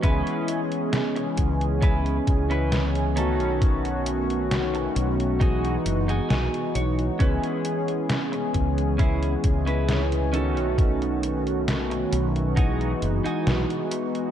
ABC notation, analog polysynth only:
X:1
M:4/4
L:1/8
Q:1/4=67
K:C#m
V:1 name="Analog polysynth"
[E,G,B,CG]6- [E,G,B,CG] [D,A,B,CF]- | [D,A,B,CF]4 [E,G,B,DF]4 | [E,G,B,CG]6- [E,G,B,CG] [D,A,B,CF]- | [D,A,B,CF]4 [E,G,B,F]4 |]